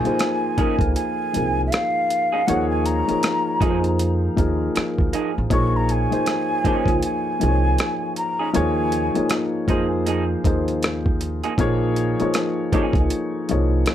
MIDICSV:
0, 0, Header, 1, 8, 480
1, 0, Start_track
1, 0, Key_signature, -5, "minor"
1, 0, Tempo, 759494
1, 1562, Time_signature, 4, 2, 24, 8
1, 8816, End_track
2, 0, Start_track
2, 0, Title_t, "Flute"
2, 0, Program_c, 0, 73
2, 0, Note_on_c, 0, 80, 86
2, 598, Note_off_c, 0, 80, 0
2, 602, Note_on_c, 0, 80, 86
2, 1021, Note_off_c, 0, 80, 0
2, 1055, Note_on_c, 0, 76, 57
2, 1079, Note_on_c, 0, 77, 97
2, 1089, Note_off_c, 0, 76, 0
2, 1557, Note_on_c, 0, 78, 84
2, 1567, Note_off_c, 0, 77, 0
2, 1700, Note_off_c, 0, 78, 0
2, 1703, Note_on_c, 0, 80, 81
2, 1806, Note_on_c, 0, 82, 88
2, 1815, Note_off_c, 0, 80, 0
2, 2524, Note_off_c, 0, 82, 0
2, 3496, Note_on_c, 0, 85, 98
2, 3642, Note_on_c, 0, 82, 83
2, 3651, Note_off_c, 0, 85, 0
2, 3736, Note_on_c, 0, 80, 94
2, 3746, Note_off_c, 0, 82, 0
2, 4446, Note_off_c, 0, 80, 0
2, 4450, Note_on_c, 0, 80, 92
2, 5141, Note_off_c, 0, 80, 0
2, 5166, Note_on_c, 0, 82, 81
2, 5405, Note_on_c, 0, 80, 78
2, 5414, Note_off_c, 0, 82, 0
2, 5883, Note_off_c, 0, 80, 0
2, 8816, End_track
3, 0, Start_track
3, 0, Title_t, "Clean electric guitar"
3, 0, Program_c, 1, 27
3, 365, Note_on_c, 1, 61, 79
3, 369, Note_on_c, 1, 63, 80
3, 372, Note_on_c, 1, 68, 83
3, 471, Note_off_c, 1, 61, 0
3, 473, Note_off_c, 1, 63, 0
3, 475, Note_off_c, 1, 68, 0
3, 1469, Note_on_c, 1, 68, 62
3, 1475, Note_on_c, 1, 63, 57
3, 1478, Note_on_c, 1, 61, 50
3, 1523, Note_off_c, 1, 68, 0
3, 1526, Note_off_c, 1, 63, 0
3, 1528, Note_off_c, 1, 61, 0
3, 2278, Note_on_c, 1, 58, 71
3, 2283, Note_on_c, 1, 63, 77
3, 2286, Note_on_c, 1, 68, 76
3, 2387, Note_off_c, 1, 58, 0
3, 2390, Note_off_c, 1, 63, 0
3, 2391, Note_off_c, 1, 68, 0
3, 3243, Note_on_c, 1, 58, 67
3, 3250, Note_on_c, 1, 63, 75
3, 3255, Note_on_c, 1, 68, 73
3, 3350, Note_off_c, 1, 58, 0
3, 3354, Note_off_c, 1, 63, 0
3, 3356, Note_off_c, 1, 68, 0
3, 4199, Note_on_c, 1, 61, 79
3, 4208, Note_on_c, 1, 63, 79
3, 4213, Note_on_c, 1, 68, 74
3, 4350, Note_off_c, 1, 61, 0
3, 4354, Note_off_c, 1, 63, 0
3, 4357, Note_off_c, 1, 68, 0
3, 5304, Note_on_c, 1, 68, 48
3, 5310, Note_on_c, 1, 63, 45
3, 5317, Note_on_c, 1, 61, 41
3, 5361, Note_off_c, 1, 68, 0
3, 5364, Note_off_c, 1, 63, 0
3, 5367, Note_off_c, 1, 61, 0
3, 6120, Note_on_c, 1, 58, 71
3, 6122, Note_on_c, 1, 63, 69
3, 6129, Note_on_c, 1, 68, 74
3, 6228, Note_off_c, 1, 58, 0
3, 6229, Note_off_c, 1, 63, 0
3, 6233, Note_off_c, 1, 68, 0
3, 6359, Note_on_c, 1, 58, 58
3, 6366, Note_on_c, 1, 63, 72
3, 6370, Note_on_c, 1, 68, 72
3, 6468, Note_off_c, 1, 58, 0
3, 6471, Note_off_c, 1, 63, 0
3, 6474, Note_off_c, 1, 68, 0
3, 7228, Note_on_c, 1, 68, 55
3, 7232, Note_on_c, 1, 63, 54
3, 7235, Note_on_c, 1, 58, 46
3, 7283, Note_off_c, 1, 68, 0
3, 7285, Note_off_c, 1, 63, 0
3, 7286, Note_off_c, 1, 58, 0
3, 8043, Note_on_c, 1, 61, 70
3, 8046, Note_on_c, 1, 63, 78
3, 8051, Note_on_c, 1, 68, 82
3, 8192, Note_off_c, 1, 61, 0
3, 8193, Note_off_c, 1, 63, 0
3, 8196, Note_off_c, 1, 68, 0
3, 8816, End_track
4, 0, Start_track
4, 0, Title_t, "Upright piano"
4, 0, Program_c, 2, 0
4, 0, Control_c, 2, 64, 127
4, 0, Note_on_c, 2, 53, 82
4, 0, Note_on_c, 2, 58, 66
4, 0, Note_on_c, 2, 63, 72
4, 0, Note_on_c, 2, 68, 68
4, 0, Note_on_c, 2, 72, 91
4, 0, Note_on_c, 2, 75, 49
4, 29, Note_off_c, 2, 53, 0
4, 29, Note_on_c, 2, 53, 57
4, 32, Note_off_c, 2, 58, 0
4, 32, Note_on_c, 2, 58, 58
4, 35, Note_off_c, 2, 63, 0
4, 35, Note_on_c, 2, 63, 49
4, 36, Note_off_c, 2, 68, 0
4, 36, Note_on_c, 2, 68, 54
4, 42, Note_off_c, 2, 72, 0
4, 42, Note_on_c, 2, 72, 67
4, 342, Note_off_c, 2, 53, 0
4, 344, Note_off_c, 2, 58, 0
4, 345, Note_off_c, 2, 63, 0
4, 346, Note_off_c, 2, 68, 0
4, 349, Note_off_c, 2, 72, 0
4, 364, Note_on_c, 2, 53, 58
4, 368, Note_on_c, 2, 58, 58
4, 369, Note_on_c, 2, 63, 54
4, 374, Note_on_c, 2, 68, 52
4, 379, Note_on_c, 2, 70, 69
4, 815, Note_off_c, 2, 53, 0
4, 817, Note_off_c, 2, 58, 0
4, 818, Note_off_c, 2, 63, 0
4, 820, Note_off_c, 2, 68, 0
4, 822, Note_off_c, 2, 70, 0
4, 842, Note_on_c, 2, 53, 46
4, 846, Note_on_c, 2, 58, 44
4, 847, Note_on_c, 2, 63, 45
4, 853, Note_on_c, 2, 68, 48
4, 855, Note_on_c, 2, 70, 55
4, 1520, Note_off_c, 2, 53, 0
4, 1522, Note_off_c, 2, 58, 0
4, 1523, Note_off_c, 2, 63, 0
4, 1526, Note_off_c, 2, 68, 0
4, 1527, Note_off_c, 2, 70, 0
4, 1564, Note_on_c, 2, 53, 75
4, 1565, Note_on_c, 2, 58, 75
4, 1570, Note_on_c, 2, 63, 75
4, 1571, Control_c, 2, 64, 0
4, 1573, Note_on_c, 2, 68, 76
4, 1574, Note_off_c, 2, 75, 0
4, 1574, Note_on_c, 2, 73, 91
4, 1664, Control_c, 2, 64, 127
4, 1916, Note_off_c, 2, 53, 0
4, 1916, Note_off_c, 2, 58, 0
4, 1919, Note_off_c, 2, 63, 0
4, 1920, Note_off_c, 2, 68, 0
4, 1921, Note_off_c, 2, 73, 0
4, 1945, Note_on_c, 2, 53, 63
4, 1948, Note_on_c, 2, 58, 55
4, 1949, Note_on_c, 2, 63, 52
4, 1954, Note_on_c, 2, 68, 54
4, 1957, Note_on_c, 2, 73, 60
4, 2260, Note_off_c, 2, 53, 0
4, 2262, Note_off_c, 2, 58, 0
4, 2263, Note_off_c, 2, 63, 0
4, 2265, Note_off_c, 2, 68, 0
4, 2267, Note_off_c, 2, 73, 0
4, 2283, Note_on_c, 2, 53, 67
4, 2285, Note_on_c, 2, 58, 57
4, 2290, Note_on_c, 2, 63, 53
4, 2291, Control_c, 2, 64, 0
4, 2292, Note_on_c, 2, 68, 58
4, 2296, Note_on_c, 2, 70, 55
4, 2337, Note_on_c, 2, 72, 66
4, 2338, Note_off_c, 2, 70, 0
4, 2395, Control_c, 2, 64, 127
4, 2735, Note_off_c, 2, 53, 0
4, 2736, Note_off_c, 2, 58, 0
4, 2738, Note_off_c, 2, 63, 0
4, 2739, Note_off_c, 2, 68, 0
4, 2758, Note_on_c, 2, 53, 68
4, 2762, Note_off_c, 2, 72, 0
4, 2763, Note_on_c, 2, 58, 62
4, 2765, Note_on_c, 2, 63, 60
4, 2769, Note_on_c, 2, 68, 65
4, 2771, Note_on_c, 2, 70, 72
4, 3438, Note_off_c, 2, 53, 0
4, 3441, Note_off_c, 2, 58, 0
4, 3442, Note_off_c, 2, 63, 0
4, 3444, Note_off_c, 2, 68, 0
4, 3445, Note_off_c, 2, 70, 0
4, 3477, Note_on_c, 2, 53, 83
4, 3480, Note_on_c, 2, 58, 73
4, 3484, Note_on_c, 2, 63, 72
4, 3488, Note_on_c, 2, 68, 75
4, 3490, Control_c, 2, 64, 0
4, 3490, Note_on_c, 2, 73, 89
4, 3602, Control_c, 2, 64, 127
4, 3832, Note_off_c, 2, 53, 0
4, 3834, Note_off_c, 2, 58, 0
4, 3836, Note_off_c, 2, 63, 0
4, 3838, Note_off_c, 2, 68, 0
4, 3839, Note_off_c, 2, 73, 0
4, 3863, Note_on_c, 2, 53, 59
4, 3864, Note_on_c, 2, 58, 54
4, 3868, Note_on_c, 2, 63, 61
4, 3872, Note_on_c, 2, 68, 53
4, 3875, Note_on_c, 2, 72, 71
4, 4179, Note_off_c, 2, 53, 0
4, 4180, Note_off_c, 2, 58, 0
4, 4182, Note_off_c, 2, 63, 0
4, 4184, Note_off_c, 2, 68, 0
4, 4185, Note_off_c, 2, 72, 0
4, 4197, Note_on_c, 2, 53, 60
4, 4200, Note_on_c, 2, 58, 59
4, 4204, Note_on_c, 2, 63, 55
4, 4207, Note_on_c, 2, 68, 59
4, 4210, Note_on_c, 2, 72, 62
4, 4249, Note_on_c, 2, 73, 69
4, 4255, Note_off_c, 2, 72, 0
4, 4652, Note_off_c, 2, 53, 0
4, 4653, Note_off_c, 2, 58, 0
4, 4655, Note_off_c, 2, 63, 0
4, 4657, Note_off_c, 2, 68, 0
4, 4675, Note_on_c, 2, 53, 59
4, 4678, Note_off_c, 2, 73, 0
4, 4680, Note_on_c, 2, 58, 44
4, 4683, Note_on_c, 2, 63, 52
4, 4686, Note_on_c, 2, 68, 44
4, 4689, Note_on_c, 2, 72, 45
4, 4729, Note_on_c, 2, 73, 59
4, 4735, Note_off_c, 2, 72, 0
4, 5357, Note_off_c, 2, 53, 0
4, 5359, Note_off_c, 2, 58, 0
4, 5361, Note_off_c, 2, 63, 0
4, 5362, Note_off_c, 2, 68, 0
4, 5384, Note_off_c, 2, 73, 0
4, 5394, Note_on_c, 2, 53, 88
4, 5396, Note_on_c, 2, 58, 75
4, 5399, Note_on_c, 2, 63, 78
4, 5404, Note_on_c, 2, 68, 78
4, 5407, Note_on_c, 2, 73, 95
4, 5410, Control_c, 2, 64, 0
4, 5510, Control_c, 2, 64, 127
4, 5751, Note_off_c, 2, 53, 0
4, 5752, Note_off_c, 2, 58, 0
4, 5753, Note_off_c, 2, 63, 0
4, 5756, Note_off_c, 2, 68, 0
4, 5757, Note_off_c, 2, 73, 0
4, 5778, Note_on_c, 2, 53, 56
4, 5780, Note_on_c, 2, 58, 53
4, 5785, Note_on_c, 2, 63, 60
4, 5787, Note_on_c, 2, 68, 57
4, 5792, Note_on_c, 2, 73, 65
4, 6097, Note_off_c, 2, 53, 0
4, 6098, Note_off_c, 2, 58, 0
4, 6100, Note_off_c, 2, 63, 0
4, 6101, Note_off_c, 2, 68, 0
4, 6104, Note_off_c, 2, 73, 0
4, 6116, Note_on_c, 2, 53, 80
4, 6118, Note_on_c, 2, 58, 74
4, 6123, Note_on_c, 2, 63, 68
4, 6124, Note_on_c, 2, 68, 77
4, 6129, Note_on_c, 2, 72, 86
4, 6130, Control_c, 2, 64, 0
4, 6231, Control_c, 2, 64, 127
4, 6571, Note_off_c, 2, 53, 0
4, 6572, Note_off_c, 2, 58, 0
4, 6575, Note_off_c, 2, 63, 0
4, 6575, Note_off_c, 2, 68, 0
4, 6578, Note_off_c, 2, 72, 0
4, 6600, Note_on_c, 2, 53, 67
4, 6602, Note_on_c, 2, 58, 66
4, 6607, Note_on_c, 2, 63, 59
4, 6609, Note_on_c, 2, 68, 58
4, 6614, Note_on_c, 2, 72, 72
4, 7279, Note_off_c, 2, 53, 0
4, 7280, Note_off_c, 2, 58, 0
4, 7283, Note_off_c, 2, 63, 0
4, 7284, Note_off_c, 2, 68, 0
4, 7286, Note_off_c, 2, 72, 0
4, 7322, Note_on_c, 2, 53, 98
4, 7324, Note_on_c, 2, 58, 86
4, 7328, Note_on_c, 2, 63, 76
4, 7330, Control_c, 2, 64, 0
4, 7331, Note_on_c, 2, 68, 89
4, 7334, Note_on_c, 2, 73, 103
4, 7442, Control_c, 2, 64, 127
4, 7675, Note_off_c, 2, 53, 0
4, 7676, Note_off_c, 2, 58, 0
4, 7678, Note_off_c, 2, 63, 0
4, 7680, Note_off_c, 2, 68, 0
4, 7681, Note_off_c, 2, 73, 0
4, 7709, Note_on_c, 2, 53, 73
4, 7711, Note_on_c, 2, 58, 65
4, 7714, Note_on_c, 2, 63, 65
4, 7719, Note_on_c, 2, 68, 63
4, 7720, Note_on_c, 2, 73, 79
4, 8022, Note_off_c, 2, 53, 0
4, 8023, Note_off_c, 2, 58, 0
4, 8025, Note_off_c, 2, 63, 0
4, 8027, Note_off_c, 2, 68, 0
4, 8028, Note_off_c, 2, 73, 0
4, 8043, Note_on_c, 2, 53, 72
4, 8046, Note_on_c, 2, 58, 64
4, 8049, Note_on_c, 2, 63, 69
4, 8053, Note_on_c, 2, 68, 63
4, 8058, Note_on_c, 2, 73, 77
4, 8495, Note_off_c, 2, 53, 0
4, 8496, Note_off_c, 2, 58, 0
4, 8498, Note_off_c, 2, 63, 0
4, 8500, Note_off_c, 2, 68, 0
4, 8502, Note_off_c, 2, 73, 0
4, 8527, Note_on_c, 2, 53, 68
4, 8529, Note_on_c, 2, 58, 54
4, 8534, Note_on_c, 2, 63, 59
4, 8535, Note_on_c, 2, 68, 53
4, 8539, Note_on_c, 2, 73, 72
4, 8816, Note_off_c, 2, 53, 0
4, 8816, Note_off_c, 2, 58, 0
4, 8816, Note_off_c, 2, 63, 0
4, 8816, Note_off_c, 2, 68, 0
4, 8816, Note_off_c, 2, 73, 0
4, 8816, End_track
5, 0, Start_track
5, 0, Title_t, "Upright bass"
5, 0, Program_c, 3, 32
5, 507, Note_on_c, 3, 37, 75
5, 588, Note_off_c, 3, 37, 0
5, 862, Note_on_c, 3, 36, 73
5, 1058, Note_off_c, 3, 36, 0
5, 1580, Note_on_c, 3, 39, 75
5, 1899, Note_off_c, 3, 39, 0
5, 2288, Note_on_c, 3, 41, 90
5, 2694, Note_off_c, 3, 41, 0
5, 2772, Note_on_c, 3, 39, 81
5, 2972, Note_off_c, 3, 39, 0
5, 3159, Note_on_c, 3, 38, 69
5, 3235, Note_off_c, 3, 38, 0
5, 3400, Note_on_c, 3, 33, 79
5, 3475, Note_off_c, 3, 33, 0
5, 3487, Note_on_c, 3, 34, 83
5, 3812, Note_off_c, 3, 34, 0
5, 4341, Note_on_c, 3, 37, 76
5, 4424, Note_off_c, 3, 37, 0
5, 4696, Note_on_c, 3, 36, 86
5, 4894, Note_off_c, 3, 36, 0
5, 5414, Note_on_c, 3, 39, 89
5, 5736, Note_off_c, 3, 39, 0
5, 6125, Note_on_c, 3, 41, 80
5, 6532, Note_off_c, 3, 41, 0
5, 6610, Note_on_c, 3, 39, 84
5, 7205, Note_off_c, 3, 39, 0
5, 7326, Note_on_c, 3, 34, 74
5, 7651, Note_off_c, 3, 34, 0
5, 8182, Note_on_c, 3, 37, 77
5, 8265, Note_off_c, 3, 37, 0
5, 8540, Note_on_c, 3, 36, 87
5, 8736, Note_off_c, 3, 36, 0
5, 8816, End_track
6, 0, Start_track
6, 0, Title_t, "Muted clean electric guitar strokes"
6, 130, Note_on_c, 9, 29, 37
6, 193, Note_off_c, 9, 29, 0
6, 2046, Note_on_c, 9, 29, 36
6, 2109, Note_off_c, 9, 29, 0
6, 3004, Note_on_c, 9, 29, 44
6, 3067, Note_off_c, 9, 29, 0
6, 3958, Note_on_c, 9, 29, 35
6, 4021, Note_off_c, 9, 29, 0
6, 5878, Note_on_c, 9, 29, 38
6, 5941, Note_off_c, 9, 29, 0
6, 7812, Note_on_c, 9, 29, 36
6, 7875, Note_off_c, 9, 29, 0
6, 8816, End_track
7, 0, Start_track
7, 0, Title_t, "Muted upright bass strokes"
7, 43, Note_on_c, 9, 29, 39
7, 106, Note_off_c, 9, 29, 0
7, 372, Note_on_c, 9, 29, 39
7, 435, Note_off_c, 9, 29, 0
7, 1965, Note_on_c, 9, 29, 42
7, 2028, Note_off_c, 9, 29, 0
7, 3015, Note_on_c, 9, 29, 47
7, 3078, Note_off_c, 9, 29, 0
7, 3881, Note_on_c, 9, 29, 44
7, 3944, Note_off_c, 9, 29, 0
7, 4209, Note_on_c, 9, 29, 40
7, 4272, Note_off_c, 9, 29, 0
7, 5801, Note_on_c, 9, 29, 42
7, 5865, Note_off_c, 9, 29, 0
7, 7720, Note_on_c, 9, 29, 43
7, 7783, Note_off_c, 9, 29, 0
7, 8050, Note_on_c, 9, 29, 39
7, 8114, Note_off_c, 9, 29, 0
7, 8816, End_track
8, 0, Start_track
8, 0, Title_t, "Drums"
8, 32, Note_on_c, 9, 42, 26
8, 96, Note_off_c, 9, 42, 0
8, 122, Note_on_c, 9, 42, 68
8, 130, Note_on_c, 9, 37, 92
8, 185, Note_off_c, 9, 42, 0
8, 193, Note_off_c, 9, 37, 0
8, 365, Note_on_c, 9, 36, 87
8, 365, Note_on_c, 9, 42, 54
8, 428, Note_off_c, 9, 36, 0
8, 428, Note_off_c, 9, 42, 0
8, 497, Note_on_c, 9, 36, 80
8, 511, Note_on_c, 9, 42, 33
8, 561, Note_off_c, 9, 36, 0
8, 574, Note_off_c, 9, 42, 0
8, 606, Note_on_c, 9, 42, 73
8, 670, Note_off_c, 9, 42, 0
8, 849, Note_on_c, 9, 42, 59
8, 912, Note_off_c, 9, 42, 0
8, 1089, Note_on_c, 9, 42, 67
8, 1099, Note_on_c, 9, 37, 99
8, 1152, Note_off_c, 9, 42, 0
8, 1163, Note_off_c, 9, 37, 0
8, 1330, Note_on_c, 9, 42, 62
8, 1393, Note_off_c, 9, 42, 0
8, 1568, Note_on_c, 9, 42, 66
8, 1632, Note_off_c, 9, 42, 0
8, 1805, Note_on_c, 9, 42, 57
8, 1868, Note_off_c, 9, 42, 0
8, 1951, Note_on_c, 9, 42, 31
8, 2014, Note_off_c, 9, 42, 0
8, 2041, Note_on_c, 9, 42, 73
8, 2048, Note_on_c, 9, 37, 98
8, 2104, Note_off_c, 9, 42, 0
8, 2111, Note_off_c, 9, 37, 0
8, 2280, Note_on_c, 9, 36, 89
8, 2285, Note_on_c, 9, 42, 55
8, 2343, Note_off_c, 9, 36, 0
8, 2348, Note_off_c, 9, 42, 0
8, 2427, Note_on_c, 9, 42, 30
8, 2490, Note_off_c, 9, 42, 0
8, 2524, Note_on_c, 9, 42, 77
8, 2587, Note_off_c, 9, 42, 0
8, 2764, Note_on_c, 9, 36, 73
8, 2769, Note_on_c, 9, 42, 56
8, 2827, Note_off_c, 9, 36, 0
8, 2832, Note_off_c, 9, 42, 0
8, 3006, Note_on_c, 9, 42, 66
8, 3016, Note_on_c, 9, 37, 90
8, 3069, Note_off_c, 9, 42, 0
8, 3080, Note_off_c, 9, 37, 0
8, 3151, Note_on_c, 9, 36, 70
8, 3214, Note_off_c, 9, 36, 0
8, 3244, Note_on_c, 9, 42, 69
8, 3308, Note_off_c, 9, 42, 0
8, 3478, Note_on_c, 9, 36, 97
8, 3481, Note_on_c, 9, 42, 72
8, 3541, Note_off_c, 9, 36, 0
8, 3545, Note_off_c, 9, 42, 0
8, 3722, Note_on_c, 9, 42, 53
8, 3785, Note_off_c, 9, 42, 0
8, 3870, Note_on_c, 9, 42, 30
8, 3933, Note_off_c, 9, 42, 0
8, 3958, Note_on_c, 9, 42, 70
8, 3966, Note_on_c, 9, 37, 85
8, 4022, Note_off_c, 9, 42, 0
8, 4029, Note_off_c, 9, 37, 0
8, 4201, Note_on_c, 9, 36, 72
8, 4203, Note_on_c, 9, 42, 48
8, 4264, Note_off_c, 9, 36, 0
8, 4266, Note_off_c, 9, 42, 0
8, 4333, Note_on_c, 9, 36, 80
8, 4347, Note_on_c, 9, 42, 32
8, 4397, Note_off_c, 9, 36, 0
8, 4410, Note_off_c, 9, 42, 0
8, 4440, Note_on_c, 9, 42, 70
8, 4503, Note_off_c, 9, 42, 0
8, 4684, Note_on_c, 9, 42, 54
8, 4747, Note_off_c, 9, 42, 0
8, 4920, Note_on_c, 9, 42, 65
8, 4930, Note_on_c, 9, 37, 109
8, 4983, Note_off_c, 9, 42, 0
8, 4994, Note_off_c, 9, 37, 0
8, 5160, Note_on_c, 9, 42, 59
8, 5223, Note_off_c, 9, 42, 0
8, 5400, Note_on_c, 9, 42, 68
8, 5463, Note_off_c, 9, 42, 0
8, 5638, Note_on_c, 9, 42, 54
8, 5701, Note_off_c, 9, 42, 0
8, 5785, Note_on_c, 9, 42, 31
8, 5849, Note_off_c, 9, 42, 0
8, 5875, Note_on_c, 9, 42, 77
8, 5882, Note_on_c, 9, 37, 93
8, 5938, Note_off_c, 9, 42, 0
8, 5945, Note_off_c, 9, 37, 0
8, 6117, Note_on_c, 9, 36, 84
8, 6121, Note_on_c, 9, 42, 59
8, 6180, Note_off_c, 9, 36, 0
8, 6184, Note_off_c, 9, 42, 0
8, 6361, Note_on_c, 9, 42, 70
8, 6425, Note_off_c, 9, 42, 0
8, 6601, Note_on_c, 9, 36, 74
8, 6605, Note_on_c, 9, 42, 56
8, 6664, Note_off_c, 9, 36, 0
8, 6668, Note_off_c, 9, 42, 0
8, 6750, Note_on_c, 9, 42, 31
8, 6813, Note_off_c, 9, 42, 0
8, 6842, Note_on_c, 9, 42, 66
8, 6852, Note_on_c, 9, 37, 100
8, 6905, Note_off_c, 9, 42, 0
8, 6916, Note_off_c, 9, 37, 0
8, 6989, Note_on_c, 9, 36, 72
8, 7052, Note_off_c, 9, 36, 0
8, 7083, Note_on_c, 9, 42, 65
8, 7146, Note_off_c, 9, 42, 0
8, 7227, Note_on_c, 9, 42, 29
8, 7290, Note_off_c, 9, 42, 0
8, 7318, Note_on_c, 9, 36, 96
8, 7323, Note_on_c, 9, 42, 68
8, 7381, Note_off_c, 9, 36, 0
8, 7386, Note_off_c, 9, 42, 0
8, 7561, Note_on_c, 9, 42, 55
8, 7624, Note_off_c, 9, 42, 0
8, 7708, Note_on_c, 9, 42, 29
8, 7772, Note_off_c, 9, 42, 0
8, 7797, Note_on_c, 9, 42, 78
8, 7805, Note_on_c, 9, 37, 92
8, 7861, Note_off_c, 9, 42, 0
8, 7868, Note_off_c, 9, 37, 0
8, 8042, Note_on_c, 9, 36, 78
8, 8044, Note_on_c, 9, 42, 52
8, 8105, Note_off_c, 9, 36, 0
8, 8107, Note_off_c, 9, 42, 0
8, 8174, Note_on_c, 9, 36, 93
8, 8187, Note_on_c, 9, 42, 31
8, 8237, Note_off_c, 9, 36, 0
8, 8250, Note_off_c, 9, 42, 0
8, 8282, Note_on_c, 9, 42, 72
8, 8345, Note_off_c, 9, 42, 0
8, 8524, Note_on_c, 9, 42, 51
8, 8587, Note_off_c, 9, 42, 0
8, 8758, Note_on_c, 9, 42, 62
8, 8769, Note_on_c, 9, 37, 90
8, 8816, Note_off_c, 9, 37, 0
8, 8816, Note_off_c, 9, 42, 0
8, 8816, End_track
0, 0, End_of_file